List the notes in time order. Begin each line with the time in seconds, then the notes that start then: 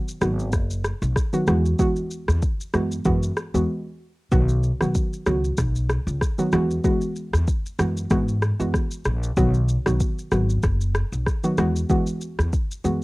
Already playing: D#3 F#3 B3 F#4
0.08 shaker
0.21 G#1 D#3 F#3 B3 F#4, cross-stick, shaker
0.39 shaker
0.52 F#1, kick, cross-stick, shaker
0.70 shaker
0.84 cross-stick, shaker
1.02 B1, shaker
1.16 kick, cross-stick, shaker
1.33 D#3 F#3 B3 F#4, shaker
1.47 E2 E3 G#3 B3 F#4, cross-stick, shaker
1.65 shaker
1.79 E3 G#3 B3 F#4, kick, shaker
1.96 shaker
2.11 shaker
2.28 E2, cross-stick, shaker
2.42 kick, shaker
2.61 shaker
2.73 F#2 E3 G#3 B3 F#4, cross-stick, shaker
2.92 shaker
3.05 F#2 E3 G#3 B3 F#4, kick, shaker
3.23 shaker
3.37 cross-stick, shaker
3.54 E2 E3 G#3 B3 F#4, shaker
4.31 B1 D#3 F#3 B3 F#4, kick, shaker
4.49 shaker
4.63 shaker
4.81 B1 D#3 F#3 B3 F#4, cross-stick, shaker
4.95 kick, shaker
5.13 shaker
5.26 C#2 D#3 F#3 B3 F#4, cross-stick, shaker
5.44 shaker
5.57 B1, kick, cross-stick, shaker
5.76 shaker
5.89 cross-stick, shaker
6.07 C#2, shaker
6.21 kick, cross-stick, shaker
6.38 D#3 F#3 B3 F#4, shaker
6.52 E2 E3 G#3 B3 F#4, cross-stick, shaker
6.71 shaker
6.84 E3 G#3 B3 F#4, kick, shaker
7.01 shaker
7.16 shaker
7.33 E2, cross-stick, shaker
7.48 kick, shaker
7.66 shaker
7.79 F#2 E3 G#3 B3 F#4, cross-stick, shaker
7.97 shaker
8.10 G#2 E3 G#3 B3 F#4, kick, cross-stick, shaker
8.28 shaker
8.42 cross-stick, shaker
8.60 F#2 E3 G#3 B3 F#4, shaker
8.74 kick, cross-stick, shaker
8.91 shaker
9.05 A#1, cross-stick, shaker
9.23 shaker
9.37 B1 D#3 F#3 B3 F#4, kick, shaker
9.54 shaker
9.68 shaker
9.86 B1 D#3 F#3 B3 F#4, cross-stick, shaker
10.00 kick, shaker
10.19 shaker
10.32 G#1 D#3 F#3 B3 F#4, cross-stick, shaker
10.50 shaker
10.63 F#1, kick, cross-stick, shaker
10.81 shaker
10.95 cross-stick, shaker
11.12 B1, shaker
11.27 kick, cross-stick, shaker
11.44 D#3 F#3 B3 F#4, shaker
11.58 E2 E3 G#3 B3 F#4, cross-stick, shaker
11.76 shaker
11.89 E3 G#3 B3 F#4, kick, shaker
12.07 shaker
12.21 shaker
12.39 E2, cross-stick, shaker
12.53 kick, shaker
12.71 shaker
12.84 F#2 E3 G#3 B3 F#4, shaker